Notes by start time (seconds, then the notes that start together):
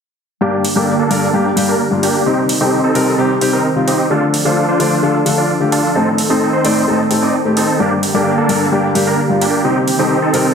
0.41 G2 D3 G3 A#3 D4 G4
0.65 open hi-hat
0.76 G2 G3 A#3 D4 G4 A4
0.99 A#3 D4 A4
1.10 G2 G3 A#3 D4 A#4, open hi-hat
1.33 G2 G3 A#3 D4 G4
1.56 G2 G3 A#3 D4 G4, open hi-hat
1.68 A#3 D4 A#4
1.91 G2 G3 A#3 D4 F4
2.03 A#3 D4 G4, open hi-hat
2.26 C3 D#3 G3 C4 D#4 G4
2.49 open hi-hat
2.60 C3 G3 C4 D#4 G4 A4
2.84 C4 D#4 A4
2.95 C3 G3 C4 D#4 A#4, open hi-hat
3.18 C3 G3 C4 D#4 G4
3.41 C3 G3 C4 D#4 G4, open hi-hat
3.53 C4 D#4 A#4
3.75 C3 G3 C4 D#4 F4
3.88 C4 D#4 G4, open hi-hat
4.10 D3 F3 A3 D4 F4 A4
4.34 open hi-hat
4.45 D3 A3 D4 F4 A4 C5
4.68 D4 F4 C5
4.79 D3 A3 D4 F4 D5, open hi-hat
5.02 D3 A3 D4 F4 A4
5.25 D3 A3 D4 F4 A4, open hi-hat
5.38 D4 F4 D5
5.60 D3 A3 D4 F4 G4
5.72 D4 F4 A4, open hi-hat
5.95 A2 D#3 A3 C4 D#4 A4
6.18 open hi-hat
6.29 A2 A3 C4 D#4 A4 C5
6.53 C4 D#4 C5
6.64 A2 A3 C4 D#4 D5, open hi-hat
6.87 A2 A3 C4 D#4 A4
7.10 A2 A3 C4 D#4 A4, open hi-hat
7.22 C4 D#4 D5
7.45 A2 A3 C4 D#4 G4
7.57 C4 D#4 A4, open hi-hat
7.79 G2 D3 G3 A#3 D4 G4
8.03 open hi-hat
8.14 G2 G3 A#3 D4 G4 A4
8.38 A#3 D4 A4
8.48 G2 G3 A#3 D4 A#4, open hi-hat
8.72 G2 G3 A#3 D4 G4
8.95 G2 G3 A#3 D4 G4, open hi-hat
9.07 A#3 D4 A#4
9.29 G2 G3 A#3 D4 F4
9.41 A#3 D4 G4, open hi-hat
9.64 C3 D#3 G3 C4 D#4 G4
9.88 open hi-hat
9.99 C3 G3 C4 D#4 G4 A4
10.22 C4 D#4 A4
10.33 C3 G3 C4 D#4 A#4, open hi-hat